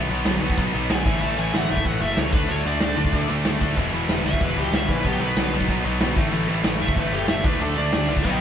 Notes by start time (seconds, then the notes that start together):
0.10 B1 B2 D#3 F#3 B3 D#4
0.25 B1 B2 D#3 F#3 B3 D#4, snare, crash
0.41 B1 B2 D#3 F#3 B3 D#4
0.50 kick
0.58 B1 B2 D#3 F#3 B3 D#4, kick, crash
0.73 B1 B2 D#3 F#3 B3 D#4
0.89 B1 B2 D#3 F#3 B3 D#4 G#5, snare, crash
1.05 A1 A2 E3 A3 C#4 E4, kick, crash
1.21 A1 A2 E3 A3 C#4 E4 A5, crash
1.37 A1 A2 E3 A3 C#4 E4 G#5
1.52 A1 A2 E3 A3 C#4 E4 F#5, snare, crash
1.68 F#1 A2 E3 A3 C#4 E4 E5
1.77 kick
1.85 A1 A2 E3 A3 C#4 E4 F#5, kick, crash
2.00 F#1 A2 E3 A3 C#4 E4 E5
2.16 C#2 A2 E3 A3 C#4 E4 C#5, snare, crash
2.32 D2 D3 A3 D4 F#4 B4, kick, crash
2.48 D2 D3 A3 D4 F#4 C#5, crash
2.64 D2 D3 A3 D4 F#4 D5
2.80 D2 D3 A3 D4 F#4, snare, crash
2.96 D2 D3 A3 D4 F#4
3.05 kick
3.12 D2 D3 A3 D4 F#4, kick, crash
3.29 D2 D3 A3 D4 F#4
3.45 D2 D3 A3 D4 F#4, snare, crash
3.61 D2 D3 A3 D4 F#4, kick
3.77 E1 E2 B2 E3 G#3 B3 E4, kick, crash
3.93 E1 E2 B2 E3 G#3 B3 E4
4.08 E1 E2 B2 E3 G#3 B3 E4, snare, crash
4.25 C#2 E2 B2 E3 G#3 B3 E4 E5
4.33 kick
4.41 E1 E2 B2 E3 G#3 B3 E4 B4, kick, crash
4.57 C#2 E2 B2 E3 G#3 B3 E4 G4
4.72 C#2 E2 B2 E3 G#3 B3 E4 E5, snare, crash
4.89 A#1 E2 B2 E3 G#3 B3 E4 B4, kick
5.04 B1 B2 D#3 F#3 B3 D#4 G4, kick, crash
5.20 B1 B2 D#3 F#3 B3 D#4 B4
5.36 B1 B2 D#3 F#3 B3 D#4, snare, crash
5.51 B1 B2 D#3 F#3 B3 D#4
5.61 kick
5.67 B1 B2 D#3 F#3 B3 D#4, kick, crash
5.84 B1 B2 D#3 F#3 B3 D#4
5.99 B1 B2 D#3 F#3 B3 D#4, snare, crash
6.15 A1 A2 E3 A3 C#4 E4, kick, crash
6.31 A1 A2 E3 A3 C#4 E4, crash
6.47 A1 A2 E3 A3 C#4 E4
6.64 A1 A2 E3 A3 C#4 E4, snare, crash
6.80 F#1 A2 E3 A3 C#4 E4 E5
6.88 kick
6.96 A1 A2 E3 A3 C#4 E4 B4, kick, crash
7.12 F#1 A2 E3 A3 C#4 E4 G4
7.28 F#1 A2 E3 A3 C#4 E4 E5, snare, crash
7.44 D2 D3 F#3 A3 D4 B4, kick
7.60 D2 D3 F#3 A3 D4 A4, crash
7.76 D2 D3 F#3 A3 D4 D5
7.93 D2 D3 F#3 A3 D4, snare, crash
8.09 C#2 D3 F#3 A3 D4
8.17 kick
8.24 B1 B2 F#3 B3 D#4 D#5 G5, kick, crash